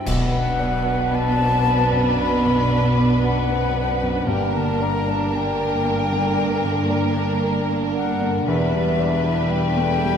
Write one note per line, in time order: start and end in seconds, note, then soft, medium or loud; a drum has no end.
0.00 0.11 C3 soft
0.00 0.11 G3 soft
0.00 0.11 E4 soft
0.00 0.11 G4 soft
0.00 0.12 C5 soft
0.00 0.11 E5 soft
0.06 2.13 B1 medium
0.06 4.25 B1 medium
0.06 2.17 B2 medium
0.06 4.25 B2 medium
0.06 4.25 B3 medium
0.06 4.25 D4 medium
0.06 4.25 B4 medium
0.06 1.17 F#5 medium
0.06 concert bass drum medium
0.06 crash medium
0.32 2.44 F#3 soft
0.32 0.75 B3 soft
0.59 2.69 B3 medium
0.59 1.02 D5 soft
0.85 1.28 D4 soft
0.85 1.91 D4 medium
1.12 1.55 B3 soft
1.12 1.64 D5 medium
1.12 2.20 A5 loud
1.38 1.65 C4 soft
1.38 3.49 B4 medium
1.65 2.08 B3 medium
1.65 3.22 D5 medium
1.92 2.34 F#2 medium
1.92 2.96 D4 soft
2.18 4.33 B2 medium
2.18 2.61 B3 soft
2.18 3.23 B5 medium
2.45 2.87 F#2 soft
2.45 4.33 F#3 medium
2.70 4.33 B3 soft
2.70 3.13 D5 soft
2.97 3.39 D4 soft
2.97 4.02 D4 medium
3.23 3.66 B3 medium
3.23 3.75 D5 medium
3.23 4.32 F#5 medium
3.50 3.76 C4 soft
3.50 4.33 B4 medium
3.76 4.19 B3 soft
3.76 5.32 D5 medium
4.02 4.29 F#2 medium
4.02 5.06 D4 medium
4.27 8.43 G1 medium
4.27 6.34 G2 medium
4.27 6.37 G2 medium
4.27 8.44 G2 medium
4.27 8.47 A#3 medium
4.27 8.43 D4 medium
4.27 8.47 A#4 medium
4.27 4.58 G5 medium
4.54 6.63 D3 soft
4.54 4.97 A#3 soft
4.54 4.84 A5 medium
4.81 8.51 A#3 medium
4.81 5.23 D5 medium
4.81 5.11 A#5 medium
5.07 5.50 D4 soft
5.07 6.12 D4 medium
5.07 5.37 A5 medium
5.33 5.58 A#3 soft
5.33 5.85 D5 soft
5.33 7.43 G5 loud
5.59 5.83 A#3 soft
5.59 8.51 A5 medium
5.85 6.28 A#3 medium
5.85 7.39 D5 medium
6.13 6.54 D3 medium
6.13 7.14 D4 medium
6.38 8.51 G2 medium
6.38 6.80 A#3 medium
6.64 8.51 D3 medium
6.64 7.06 D3 soft
6.89 8.50 G3 medium
6.89 7.31 D5 medium
7.15 8.19 D4 medium
7.15 7.58 D4 medium
7.40 7.68 A#3 medium
7.40 7.93 D5 medium
7.67 7.94 A#3 soft
7.67 8.50 A#4 medium
7.94 8.37 A#3 soft
7.94 9.49 D5 medium
7.94 8.50 F#5 medium
8.21 8.47 D3 soft
8.21 10.17 D4 medium
8.46 10.17 E1 medium
8.46 10.17 E2 medium
8.46 10.17 G3 medium
8.46 10.17 D4 medium
8.46 10.17 B4 medium
8.46 9.52 E5 medium
8.73 10.17 B2 medium
8.73 9.15 G3 soft
8.99 10.17 G3 medium
8.99 9.40 D5 medium
9.24 9.66 E4 medium
9.24 10.17 E4 medium
9.50 9.92 G3 medium
9.50 10.00 D5 medium
9.50 10.17 G5 loud
9.76 10.02 A3 medium
9.76 10.17 G4 medium
10.01 10.17 G3 medium
10.01 10.17 D5 medium